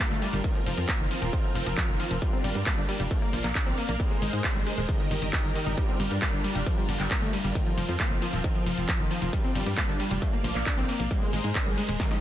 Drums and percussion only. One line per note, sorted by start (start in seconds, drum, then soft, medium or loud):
0.22 open hi-hat loud
0.22 ride medium
0.33 closed hi-hat medium
0.44 kick loud
0.44 closed hi-hat medium
0.44 ride medium
0.66 open hi-hat loud
0.66 ride medium
0.78 closed hi-hat medium
0.89 kick loud
0.89 clap loud
0.89 closed hi-hat medium
0.89 ride medium
1.11 open hi-hat loud
1.11 ride medium
1.22 closed hi-hat medium
1.33 kick loud
1.33 closed hi-hat medium
1.33 ride medium
1.55 open hi-hat loud
1.55 ride medium
1.66 closed hi-hat medium
1.78 kick loud
1.78 clap loud
1.78 closed hi-hat medium
1.78 ride medium
2.00 open hi-hat loud
2.00 ride medium
2.11 closed hi-hat medium
2.22 kick loud
2.22 closed hi-hat medium
2.22 ride medium
2.44 open hi-hat loud
2.44 ride medium
2.55 closed hi-hat medium
2.66 kick loud
2.66 clap loud
2.66 closed hi-hat medium
2.66 ride medium
2.89 open hi-hat loud
2.89 ride medium
3.00 closed hi-hat medium
3.11 kick loud
3.11 closed hi-hat medium
3.11 ride medium
3.33 open hi-hat loud
3.33 ride medium
3.44 clap soft
3.44 closed hi-hat medium
3.55 kick loud
3.55 clap loud
3.55 closed hi-hat medium
3.55 ride medium
3.78 open hi-hat loud
3.78 ride medium
3.89 closed hi-hat medium
4.00 kick loud
4.00 closed hi-hat medium
4.00 ride medium
4.22 open hi-hat loud
4.22 ride medium
4.33 closed hi-hat medium
4.44 kick loud
4.44 clap loud
4.44 closed hi-hat medium
4.44 ride medium
4.67 open hi-hat loud
4.67 ride medium
4.78 closed hi-hat medium
4.89 kick loud
4.89 closed hi-hat medium
4.89 ride medium
5.11 open hi-hat loud
5.11 ride medium
5.22 closed hi-hat medium
5.33 kick loud
5.33 clap loud
5.33 closed hi-hat medium
5.33 ride medium
5.55 open hi-hat loud
5.55 ride medium
5.66 closed hi-hat medium
5.78 kick loud
5.78 closed hi-hat medium
5.78 ride medium
6.00 open hi-hat loud
6.00 ride medium
6.11 closed hi-hat medium
6.22 kick loud
6.22 clap loud
6.22 closed hi-hat medium
6.22 ride medium
6.44 open hi-hat loud
6.44 ride medium
6.55 closed hi-hat medium
6.66 kick loud
6.66 closed hi-hat medium
6.66 ride medium
6.89 open hi-hat loud
6.89 ride medium
7.00 clap soft
7.00 closed hi-hat medium
7.11 kick loud
7.11 clap loud
7.11 closed hi-hat medium
7.11 ride medium
7.33 open hi-hat loud
7.33 ride medium
7.44 closed hi-hat medium
7.55 kick loud
7.55 closed hi-hat medium
7.55 ride medium
7.78 open hi-hat loud
7.78 ride medium
7.89 closed hi-hat medium
8.00 kick loud
8.00 clap loud
8.00 closed hi-hat medium
8.00 ride medium
8.22 open hi-hat loud
8.22 ride medium
8.33 closed hi-hat medium
8.44 kick loud
8.44 closed hi-hat medium
8.44 ride medium
8.66 open hi-hat loud
8.66 ride medium
8.78 closed hi-hat medium
8.89 kick loud
8.89 clap loud
8.89 closed hi-hat medium
8.89 ride medium
9.11 open hi-hat loud
9.11 ride medium
9.22 closed hi-hat medium
9.33 kick loud
9.33 closed hi-hat medium
9.33 ride medium
9.55 open hi-hat loud
9.55 ride medium
9.66 closed hi-hat medium
9.78 kick loud
9.78 clap loud
9.78 closed hi-hat medium
9.78 ride medium
10.00 open hi-hat loud
10.00 ride medium
10.11 closed hi-hat medium
10.22 kick loud
10.22 closed hi-hat medium
10.22 ride medium
10.44 open hi-hat loud
10.44 ride medium
10.55 clap soft
10.55 closed hi-hat medium
10.66 kick loud
10.66 clap loud
10.66 closed hi-hat medium
10.66 ride medium
10.89 open hi-hat loud
10.89 ride medium
11.00 closed hi-hat medium
11.11 kick loud
11.11 closed hi-hat medium
11.11 ride medium
11.33 open hi-hat loud
11.33 ride medium
11.44 closed hi-hat medium
11.55 kick loud
11.55 clap loud
11.55 closed hi-hat medium
11.55 ride medium
11.78 open hi-hat loud
11.78 ride medium
11.89 closed hi-hat medium
12.00 kick loud
12.00 snare medium
12.00 closed hi-hat medium
12.00 ride medium
12.11 snare medium